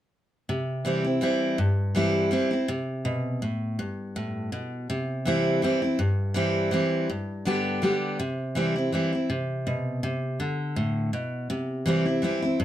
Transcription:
0.49 1.19 C3 medium
0.85 1.04 E3 medium
0.85 1.05 G3 medium
0.85 1.05 C4 medium
0.85 1.03 E4 loud
1.04 1.21 C4 soft
1.04 1.21 E4 medium
1.21 1.57 E3 medium
1.21 1.57 G3 medium
1.21 1.57 C4 medium
1.21 1.58 E4 medium
1.58 2.29 G2 loud
1.95 2.30 E3 medium
1.95 2.31 G3 medium
1.95 2.31 C4 medium
1.95 2.31 E4 loud
2.31 2.51 E3 medium
2.31 2.51 G3 medium
2.31 2.52 C4 medium
2.31 2.50 E4 medium
2.51 2.69 C4 soft
2.51 2.68 E4 medium
2.68 3.39 C3 medium
3.05 3.40 B2 medium
3.42 3.77 A2 medium
3.79 4.49 G2 medium
4.16 4.51 A2 medium
4.52 4.87 B2 medium
4.90 5.59 C3 medium
5.25 5.61 E3 medium
5.25 5.61 G3 medium
5.25 5.61 C4 loud
5.25 5.62 E4 loud
5.62 5.81 E3 medium
5.62 5.82 G3 medium
5.62 5.82 C4 medium
5.62 5.81 E4 medium
5.82 5.99 C4 medium
5.82 5.98 E4 medium
5.99 6.69 G2 loud
6.34 6.70 E3 medium
6.34 6.71 G3 medium
6.34 6.71 C4 medium
6.34 6.71 E4 loud
6.71 7.07 E3 medium
6.71 7.07 G3 medium
6.71 7.08 C4 medium
6.71 7.08 E4 medium
7.10 7.79 G2 medium
7.45 7.81 D3 medium
7.45 7.81 G3 medium
7.45 7.81 B3 loud
7.45 7.82 G4 loud
7.82 8.17 D3 medium
7.82 8.18 G3 medium
7.82 8.18 B3 medium
7.82 8.18 G4 medium
8.19 8.89 C3 medium
8.55 8.75 E3 medium
8.55 8.75 G3 medium
8.55 8.76 C4 loud
8.55 8.75 E4 medium
8.76 8.93 C4 soft
8.76 8.92 E4 medium
8.92 9.12 E3 medium
8.92 9.12 G3 medium
8.92 9.12 C4 medium
8.92 9.11 E4 medium
9.13 9.30 C4 soft
9.13 9.29 E4 medium
9.30 9.99 C3 medium
9.67 10.01 B2 medium
10.03 10.38 C3 medium
10.40 11.10 D3 medium
10.76 11.11 A2 medium
11.13 11.48 B2 medium
11.50 12.20 C3 medium
11.86 12.05 E3 loud
11.86 12.06 G3 loud
11.86 12.06 C4 loud
11.86 12.04 E4 loud
12.06 12.23 C4 soft
12.06 12.22 E4 medium
12.22 12.42 E3 medium
12.22 12.42 G3 medium
12.22 12.43 C4 medium
12.22 12.41 E4 medium
12.42 12.60 C4 medium
12.42 12.59 E4 medium
12.60 12.65 G2 loud

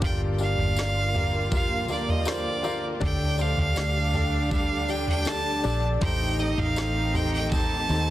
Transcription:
0.01 0.54 G1 loud
0.01 3.02 G2 medium
0.01 1.11 G2 medium
0.01 5.98 D3 medium
0.01 1.11 D3 medium
0.01 2.99 G3 medium
0.01 2.97 A#3 medium
0.01 2.99 A#3 medium
0.01 2.99 F4 medium
0.01 0.38 F4 loud
0.01 1.14 G4 medium
0.01 0.38 G4 medium
0.01 0.38 A#4 medium
0.01 0.39 D5 loud
0.01 0.21 G5 loud
0.01 kick loud
0.01 floor tom loud
0.01 tambourine soft
0.38 1.89 D4 medium
0.38 0.75 F4 medium
0.38 0.75 G4 medium
0.38 0.76 A#4 medium
0.38 0.76 F5 medium
0.38 tambourine soft
0.43 1.50 F5 loud
0.58 1.89 G1 medium
0.58 floor tom medium
0.76 2.63 A#3 medium
0.76 1.12 F4 medium
0.76 1.13 G4 medium
0.76 1.13 A#4 medium
0.76 1.13 D5 medium
0.76 snare loud
0.76 tambourine loud
1.14 1.50 F4 medium
1.14 2.26 G4 medium
1.14 1.50 G4 medium
1.14 1.50 A#4 medium
1.14 1.51 D5 medium
1.14 floor tom medium
1.52 3.09 F3 medium
1.52 1.87 F4 medium
1.52 1.88 G4 medium
1.52 1.88 A#4 medium
1.52 1.88 F5 medium
1.52 1.88 F5 loud
1.52 kick medium
1.52 floor tom medium
1.52 tambourine medium
1.88 2.98 D2 loud
1.88 3.38 D4 medium
1.88 2.24 F4 medium
1.88 2.24 G4 medium
1.88 2.25 A#4 medium
1.88 2.11 D5 medium
1.88 2.25 F5 medium
1.88 tambourine soft
2.09 2.30 D#5 medium
2.09 floor tom medium
2.25 2.62 F4 medium
2.25 2.62 G4 medium
2.25 3.01 G4 medium
2.25 2.62 A#4 medium
2.25 2.63 C5 loud
2.25 2.84 D5 loud
2.25 snare loud
2.25 tambourine medium
2.63 3.09 A#3 medium
2.63 2.99 F4 loud
2.63 2.99 G4 medium
2.63 3.00 A#4 medium
2.63 3.00 F5 loud
2.63 tambourine medium
3.00 3.54 D2 loud
3.00 4.10 A2 medium
3.00 6.01 D3 medium
3.00 5.99 G3 medium
3.00 8.10 A3 medium
3.00 3.36 D4 loud
3.00 6.02 D4 loud
3.00 3.37 G4 medium
3.00 5.99 G4 medium
3.00 4.13 A4 medium
3.00 3.37 A4 loud
3.00 3.38 D5 loud
3.00 3.43 G5 loud
3.00 kick loud
3.00 floor tom loud
3.00 tambourine soft
3.38 3.74 D4 medium
3.38 3.75 G4 medium
3.38 4.88 G4 medium
3.38 3.75 A4 medium
3.38 3.75 C5 medium
3.38 4.52 F5 loud
3.38 tambourine soft
3.57 3.75 D2 medium
3.57 floor tom medium
3.76 5.60 D2 loud
3.76 4.12 D4 medium
3.76 5.63 D4 medium
3.76 4.12 G4 medium
3.76 4.12 A4 medium
3.76 4.13 F5 medium
3.76 snare loud
3.76 tambourine medium
4.14 4.49 D4 medium
4.14 4.49 G4 medium
4.14 5.26 A4 medium
4.14 4.50 A4 medium
4.14 4.50 D5 medium
4.14 floor tom medium
4.14 tambourine soft
4.50 6.01 G3 medium
4.50 4.87 D4 medium
4.50 4.87 G4 medium
4.50 4.87 A4 medium
4.50 4.88 D5 medium
4.50 4.91 F5 loud
4.50 kick medium
4.50 floor tom medium
4.50 tambourine medium
4.88 5.25 D4 medium
4.88 6.02 G4 medium
4.88 5.25 G4 medium
4.88 5.25 A4 medium
4.88 5.25 D5 medium
4.88 5.08 G5 loud
4.88 tambourine soft
5.07 5.30 G5 loud
5.07 floor tom medium
5.25 5.62 D4 loud
5.25 5.62 G4 medium
5.25 6.01 A4 medium
5.25 5.63 A4 medium
5.25 5.63 D5 loud
5.25 5.84 A5 loud
5.25 snare loud
5.25 tambourine medium
5.63 5.99 A#1 medium
5.63 6.00 D4 loud
5.63 6.09 D4 medium
5.63 6.00 G4 loud
5.63 6.00 A4 medium
5.63 6.00 D5 loud
5.63 tambourine medium
6.01 6.54 A1 loud
6.01 7.11 A2 medium
6.01 8.10 D#3 medium
6.01 8.10 A3 medium
6.01 7.10 A3 medium
6.01 8.10 C4 medium
6.01 8.10 D#4 loud
6.01 6.36 D#4 loud
6.01 6.36 G4 loud
6.01 7.12 G4 medium
6.01 8.10 G4 medium
6.01 6.37 A4 medium
6.01 6.38 C5 loud
6.01 6.41 G5 loud
6.01 kick loud
6.01 floor tom loud
6.38 6.74 D#4 medium
6.38 7.88 D#4 medium
6.38 6.74 G4 medium
6.38 6.75 A4 medium
6.38 6.75 C5 medium
6.38 6.59 D#5 loud
6.38 tambourine soft
6.58 7.85 A1 loud
6.58 7.17 F5 loud
6.58 floor tom medium
6.76 7.50 C4 medium
6.76 7.12 D#4 medium
6.76 7.12 G4 medium
6.76 7.12 A4 medium
6.76 7.13 C5 medium
6.76 snare loud
6.76 tambourine loud
7.13 7.50 D#4 medium
7.13 8.10 G4 medium
7.13 7.50 G4 medium
7.13 7.50 A4 medium
7.13 7.50 C5 medium
7.13 7.33 G5 loud
7.13 floor tom medium
7.13 tambourine soft
7.34 7.51 G5 loud
7.51 8.10 C4 medium
7.51 7.87 D#4 medium
7.51 7.88 G4 medium
7.51 7.88 A4 medium
7.51 7.88 C5 medium
7.51 8.10 A5 loud
7.51 kick medium
7.51 floor tom medium
7.51 tambourine medium
7.89 8.10 D#2 loud
7.89 8.10 D#4 medium
7.89 8.10 G4 medium
7.89 8.10 A4 medium
7.89 8.10 C5 medium
7.89 tambourine soft

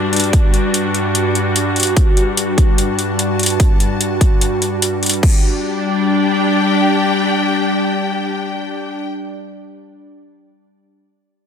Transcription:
0.00 5.19 G2 medium
0.00 5.19 G3 medium
0.00 5.23 G3 medium
0.00 5.22 D4 medium
0.00 5.21 F#4 medium
0.13 closed hi-hat soft
0.16 closed hi-hat medium
0.20 closed hi-hat medium
0.24 closed hi-hat soft
0.33 kick loud
0.33 closed hi-hat medium
0.54 closed hi-hat soft
0.74 closed hi-hat medium
0.94 closed hi-hat soft
1.15 closed hi-hat medium
1.35 closed hi-hat soft
1.56 closed hi-hat medium
1.76 closed hi-hat soft
1.80 closed hi-hat medium
1.83 closed hi-hat medium
1.87 closed hi-hat soft
1.97 kick loud
1.97 closed hi-hat medium
2.17 closed hi-hat soft
2.37 closed hi-hat medium
2.58 kick medium
2.58 closed hi-hat soft
2.63 5.25 A5 medium
2.78 closed hi-hat medium
2.99 closed hi-hat soft
3.19 closed hi-hat medium
3.39 closed hi-hat soft
3.43 closed hi-hat medium
3.46 closed hi-hat medium
3.50 closed hi-hat soft
3.60 kick loud
3.60 closed hi-hat medium
3.80 closed hi-hat medium
4.01 closed hi-hat medium
4.21 kick medium
4.21 closed hi-hat soft
4.41 closed hi-hat medium
4.62 closed hi-hat medium
4.82 closed hi-hat medium
5.03 closed hi-hat soft
5.06 closed hi-hat medium
5.09 closed hi-hat medium
5.14 closed hi-hat soft
5.23 8.96 G3 medium
5.23 8.96 D4 medium
5.23 8.96 D5 medium
5.23 kick loud
5.23 crash medium
5.29 9.02 G4 medium
5.36 9.09 G5 medium

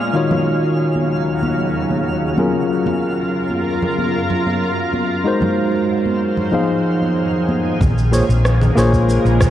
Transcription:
0.00 0.13 A#2 medium
0.00 0.12 G#3 medium
0.00 0.10 A#3 medium
0.00 0.13 C#4 medium
0.00 0.11 F4 medium
0.00 0.11 G#4 medium
0.00 0.12 C5 medium
0.00 0.12 C#5 medium
0.00 7.83 F5 medium
0.00 7.82 F6 medium
0.13 2.36 D#2 medium
0.13 2.36 C#3 medium
0.13 2.34 D#3 medium
0.13 2.36 F#3 medium
0.13 2.34 D#4 medium
0.13 2.35 F4 medium
0.13 2.35 F#4 medium
0.13 2.35 C#5 medium
0.31 high conga medium
0.31 low conga medium
0.96 high conga medium
1.43 high conga medium
1.91 high conga medium
2.36 5.23 F#2 medium
2.36 5.21 F#3 medium
2.36 5.21 C#4 medium
2.36 5.22 F4 medium
2.36 5.23 F4 medium
2.36 5.22 G#4 medium
2.36 5.23 A#4 medium
2.36 high conga medium
2.86 high conga medium
2.86 low conga medium
3.50 high conga medium
3.82 low conga medium
3.98 high conga medium
4.30 low conga medium
4.47 high conga medium
4.93 high conga medium
5.24 6.49 G#3 medium
5.24 6.49 D#4 medium
5.24 6.50 F#4 medium
5.24 6.50 A#4 medium
5.24 6.50 C5 medium
5.41 high conga medium
5.41 low conga medium
6.06 high conga medium
6.37 low conga medium
6.51 7.76 F3 medium
6.51 7.77 D#4 medium
6.51 7.77 G#4 medium
6.51 7.77 C5 medium
6.51 7.78 F5 medium
6.51 high conga medium
7.02 high conga soft
7.49 high conga medium
7.81 8.21 A#1 medium
7.81 9.50 C#3 medium
7.81 9.50 G#3 medium
7.81 9.50 A#3 medium
7.81 kick loud
7.81 low conga medium
7.81 shaker soft
7.98 shaker soft
8.12 8.23 A#3 medium
8.12 8.24 F4 medium
8.12 8.24 G#4 medium
8.12 8.24 C5 medium
8.12 8.24 C#5 medium
8.12 shaker medium
8.29 8.68 A#1 loud
8.29 shaker soft
8.45 cross-stick medium
8.45 shaker soft
8.61 low conga medium
8.61 shaker soft
8.75 9.16 A#1 medium
8.75 9.50 A#3 medium
8.75 9.50 F4 medium
8.75 9.50 G#4 medium
8.75 9.50 C5 medium
8.75 9.50 C#5 loud
8.75 shaker medium
8.93 kick medium
8.93 shaker soft
9.09 shaker soft
9.25 9.50 A#1 medium
9.25 shaker soft
9.40 kick loud
9.40 cross-stick medium
9.40 low conga medium
9.40 shaker medium

